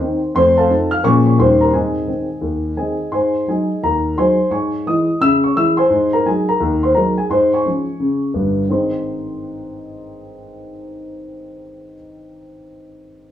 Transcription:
Already playing: C5 G#5 C6
0.00 D#3 C4 D#4
0.35 F2 A3 C5 C6
0.57 A4 F5 A5
0.69 F3 C4 D#4
0.91 F5 F6
1.03 A#2 F3 G#3 C#4 C#5 C#6
1.27 C#5 C#6
1.38 D#2 D#3 G3 C#4 C5 C6
1.61 A#4 A#5
1.73 G#2 C4 G#4 D#5 G#5
2.07 D#3 G#3 C4
2.41 D#2
2.76 D#3 G#3 C4 G#4 D#5 G#5
3.12 G#2 C5 G#5 C6
3.47 F#3 G#3 D#4 G#4 D#5 G#5
3.83 D#2 A#4 A#5
4.16 F#3 G#3 D#4 C5 G#5 C6
4.50 G#2 C#5 G#5 C#6
4.86 E3 G#3 E4 D#5 D#6
5.20 C#3 E5 E6
5.44 C#5 C#6
5.56 E3 G#3 E4 E5 E6
5.77 C5 G#5 C6
5.90 G#2
6.13 A#4 A#5
6.25 F#3 G#3 D#4 G#4 G#5
6.49 A#4 A#5
6.60 D#2
6.83 C5 C6
6.94 F#3 G#3 D#4 A#4 A#5
7.18 G#4 G#5
7.30 G#2 C5 C6
7.54 C#5 G#5 C#6
7.65 F3 G#3 C#4
8.00 C#3
8.34 G1 G2
8.69 G#2 D#3 C4 D#4 G#4 C5 C6

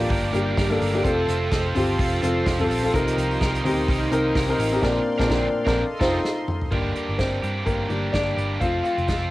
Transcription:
Already playing: G2 A#3 D4 F4 G4 A#4 D5 G5 D6
0.09 G1 G3 A#3 D4 A#4, kick, hi-hat pedal, open hi-hat
0.33 G1 G3 A#3 D4 G4 A#4, hi-hat pedal, open hi-hat
0.57 G1 G2 D3 G3 A#3 D4 A#4, kick, snare, hi-hat pedal, open hi-hat
0.70 A#3 D4 A4
0.80 G1 G3 A#3 D4 A#4, hi-hat pedal, open hi-hat
0.93 A#3 D4 G4
1.04 F1 F3 A3 C4 F4 A4 C5 F5 C6, kick, hi-hat pedal, open hi-hat
1.27 F1 C4 F4 A4, hi-hat pedal, open hi-hat
1.51 F1 F3 C4 F4 A4, kick, snare, hi-hat pedal, open hi-hat
1.75 G1 C4 F4 G4 A4, floor tom, hi-hat pedal, open hi-hat
1.99 F1 F3 C4 F4 A4, kick, hi-hat pedal, open hi-hat
2.22 F1 C4 F4 A4, hi-hat pedal, open hi-hat
2.46 F1 F3 C4 F4 A4, kick, snare, hi-hat pedal, open hi-hat
2.59 C4 F4 A4, floor tom
2.69 A#1 C4 F4 A4, hi-hat pedal, open hi-hat
2.83 C4 F4 A4, open hi-hat
2.93 C2 C3 F3 G3 A#3 C4 D#4 F4 A#4 D#5 G5 C6, kick, hi-hat pedal, open hi-hat
3.07 hi-hat pedal
3.17 C2 A#3 D#4 A#4, hi-hat pedal, open hi-hat
3.31 open hi-hat
3.40 C2 C3 G3 A#3 D#4 A#4, kick, snare, hi-hat pedal, open hi-hat
3.55 hi-hat pedal
3.64 D2 A#3 C4 D#4 G4 A#4, floor tom, hi-hat pedal, open hi-hat
3.88 C2 D#3 G3 A#3 D#4 A#4, kick, hi-hat pedal, open hi-hat
4.11 C2 A#3 C4 D#4 A#4, hi-hat pedal, open hi-hat
4.35 C2 C3 G3 A#3 D#4 A#4, kick, snare, hi-hat pedal, open hi-hat
4.48 C4 D#4 A#4
4.58 A1 A#3 D#4 A#4, hi-hat pedal, open hi-hat
4.71 C4 D#4 G4, open hi-hat
4.82 A#1 A#2 D3 F3 C4 D4 A#4 D5 F5 C6, kick, snare, crash
5.18 A#1 A#2 D3 F3 C4 D4 A#4, kick, snare
5.29 A#1 A#2 D3 F3 C4 D4 A#4, kick, snare
5.66 A#1 D3 F3 C4 D4 A#4, kick, snare
5.77 A4 D#5 C6
6.00 F1 C3 C4 D#4 F4 A4 C5, kick, snare, crash
6.25 snare
6.48 mid tom
6.62 floor tom
6.71 G1 G2 D3 G3 A#3 D4 G4 A#4, kick, crash
6.95 G3 A#3 D4 G4, closed hi-hat
7.09 G1
7.18 G1 G3 A#3 C4 D4 G4 C5, kick, snare, closed hi-hat
7.42 G2 G3 A#3 D4 G4, closed hi-hat
7.65 G1 G2 D3 G3 A#3 D4 G4 A#4, kick, closed hi-hat
7.89 G1 G3 A#3 D4 G4, closed hi-hat
8.12 G1 G3 A#3 D4 G4 D5, kick, snare, closed hi-hat
8.37 G1 G3 A#3 D4 G4, closed hi-hat
8.60 F1 F3 A3 C4 F4 A4 F5, kick, closed hi-hat
8.83 C4 F4 A4 F5, closed hi-hat
8.98 F1, closed hi-hat
9.08 F1 F3 C4 F4 A4, kick, snare, closed hi-hat

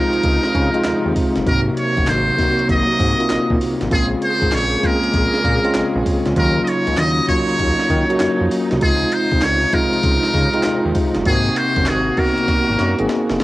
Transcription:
Already playing: C3 F3 G#3 C4 D#4 F4 A#4
0.13 closed hi-hat
0.23 C#2, kick, closed hi-hat, tambourine
0.43 snare
0.55 C#3, kick, closed hi-hat
0.74 G#3 C4 D#4 F4, closed hi-hat
0.84 D#2, snare, clap, closed hi-hat, tambourine
1.05 D#2
1.16 kick, open hi-hat, tambourine
1.36 F#1, snare, closed hi-hat
1.46 G#1 C3 F#3 A#3 D#4 F#4 A#4, kick, closed hi-hat, tambourine
1.77 C#5, closed hi-hat, tambourine
1.97 F#1, kick, closed hi-hat
2.07 G#1 C5, snare, clap, closed hi-hat, tambourine
2.37 A#3 C4 D#4 F#4, kick, open hi-hat, tambourine
2.59 closed hi-hat
2.69 G#1 D#5, kick, closed hi-hat, tambourine
3.00 G#2, kick, closed hi-hat
3.18 A#3 C4 D#4 F4, closed hi-hat
3.30 A#1, snare, clap, closed hi-hat, tambourine
3.50 A#1, kick
3.61 open hi-hat, tambourine
3.81 G#1, snare, closed hi-hat
3.90 A#1 C#3 G#3 A#3 C4 C#4 F4 G#4, kick, closed hi-hat, tambourine
4.22 C5, closed hi-hat, tambourine
4.42 G#1, kick, closed hi-hat
4.52 A#1 C#5, snare, clap, closed hi-hat, tambourine
4.83 G#3 C4 C#4 F4 A#4, kick, closed hi-hat, tambourine
5.04 closed hi-hat
5.14 A#1, kick, closed hi-hat, tambourine
5.34 snare
5.45 A#2, kick, closed hi-hat
5.64 G#3 C4 C#4 F4, closed hi-hat
5.75 A#1, snare, clap, closed hi-hat, tambourine
5.95 A#1
6.06 kick, open hi-hat, tambourine
6.26 C#2, snare, closed hi-hat
6.36 D#2 F#3 A#3 C#4 D#4 F4 A#4, kick, closed hi-hat, tambourine
6.64 D#5, closed hi-hat, tambourine
6.68 C#5
6.87 C#2, closed hi-hat
6.97 D#2 D#5, snare, clap, closed hi-hat, tambourine
7.28 F#3 A#3 C#4 F4 C#5, kick, closed hi-hat, tambourine
7.49 closed hi-hat
7.59 D#2, kick, closed hi-hat, tambourine
7.79 snare
7.90 D#3, kick, closed hi-hat
8.10 F#3 A#3 C#4 F#4, closed hi-hat
8.20 F2, snare, clap, closed hi-hat, tambourine
8.41 F2
8.51 open hi-hat, tambourine
8.71 C2, snare, closed hi-hat
8.81 C#2 C3 F3 G#3 C4 D#4 F4 G#4, kick, closed hi-hat, tambourine
9.12 C5, closed hi-hat, tambourine
9.32 C2, kick, closed hi-hat
9.42 C#2 C#5, snare, clap, closed hi-hat, tambourine
9.73 G#3 C4 D#4 F4 A#4, kick, closed hi-hat, tambourine
9.93 closed hi-hat
10.03 C#2, kick, closed hi-hat, tambourine
10.23 snare
10.34 C#3, kick, closed hi-hat
10.54 G#3 C4 D#4 F4, closed hi-hat
10.63 D#2, snare, clap, closed hi-hat, tambourine
10.85 D#2
10.95 kick, open hi-hat, tambourine
11.15 F#1, snare, closed hi-hat
11.26 G#1 A#3 C4 D#4 F#4 G#4, kick, closed hi-hat, tambourine
11.56 C5, closed hi-hat, tambourine
11.76 F#1, kick, closed hi-hat
11.86 G#1 G#4, snare, clap, closed hi-hat, tambourine
12.17 A#3 B3 D#4 F#4 A#4, kick, open hi-hat, tambourine
12.24 C4
12.38 closed hi-hat
12.48 kick, snare, closed hi-hat
12.69 G#1
12.79 F#2, snare, closed hi-hat
12.98 G#1 A#3 C4 D#4 G#4, closed hi-hat
13.09 snare, closed hi-hat
13.29 F1, snare
13.40 snare, open hi-hat

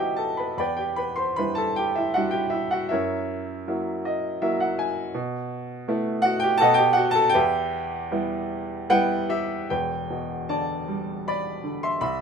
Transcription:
Already playing: B2 F#3 B3 D#4 E4 F#4 A4 B4 D#5 E5 F#5 G5 A5
0.00 G4
0.16 A4 A5
0.37 B4 B5
0.57 E2 B4 D5 G5 B5
0.77 G4 G5
0.96 B4 B5
1.16 C5 C6
1.36 G3 D4 E4 B4 B5
1.55 A4 A5
1.76 G4 G5
1.95 E4 E5
2.14 G3 D4 E4 F#4 F#5
2.31 G4 G5
2.50 E4 E5
2.71 F#4 F#5
2.89 F#2 E4 A#4 C#5 E5
3.68 F#3 A#3 E4
4.05 D#5
4.42 F#3 A#3 E4 E5
4.60 F#5
4.79 G#5
5.14 B2
5.88 A3 B3 E4
6.22 F#4 F#5
6.40 G4 G5
6.58 B2 A4 D#5 F#5 A5
6.74 G5
6.78 G4
6.93 F#5
6.97 F#4
7.11 A5
7.15 A4
7.29 G5
7.34 E2 G4 B4 E5
8.11 G3 B3 E4
8.90 G3 B3 E4 B4 F#5 G5
9.29 G4 E5
9.70 E1 E2 B4 G5
10.10 B2
10.49 D3 D5 A5
10.88 G3
11.28 D5 B5
11.64 D3
11.83 E5 C6
12.01 C2 E5 B5

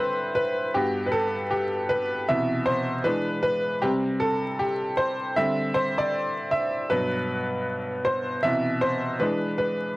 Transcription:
Already playing: D3 G3 C4 B4 C5 E5
0.35 B4
0.74 G2 B3 F#4 G4
1.06 B4
1.11 A4
1.51 G4
1.89 B4
2.28 B2 C3 E3 E5
2.66 C5
3.04 E3 G#3 D4 B4
3.43 B4
3.82 C3 G3 C4 G4
4.20 A4
4.59 G4
4.97 C5
5.37 D3 G3 C4 E5
5.74 C5
5.98 D5
6.51 E5
6.90 G2 B2 F#3 B4
8.05 C5
8.43 B2 C3 E3 E5
8.81 C5
9.20 E3 G#3 D4 B4
9.58 B4

